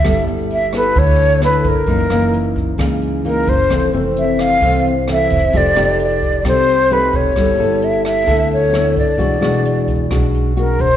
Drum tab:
HH |xxxxxxxx|xxxxxxxx|xxxxxxxx|xxxxxxxx|
SD |r--r--r-|-r--r---|r--r--r-|-r--r---|
BD |o---o--o|o--oo--o|o---o--o|o--oo--o|

HH |xxxxxxxx|xxxxxxxx|
SD |r--r--r-|-r--r---|
BD |o---o--o|o--oo--o|